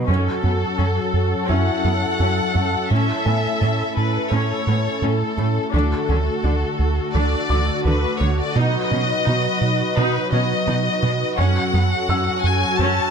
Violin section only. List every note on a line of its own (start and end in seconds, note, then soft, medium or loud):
0.08 1.46 A4 medium
1.49 2.91 F#5 medium
2.91 3.94 E5 medium
3.96 4.31 B4 medium
4.32 5.03 C#5 soft
5.03 5.72 A4 soft
5.73 7.12 A4 medium
7.14 7.83 D5 medium
7.86 8.20 B4 medium
8.21 8.38 C#5 soft
8.39 8.56 D5 medium
8.56 9.97 D#5 medium
9.97 10.32 B4 medium
10.32 11.36 D#5 medium
11.38 12.42 F#5 medium
12.44 12.79 G#5 medium
12.78 13.11 A5 medium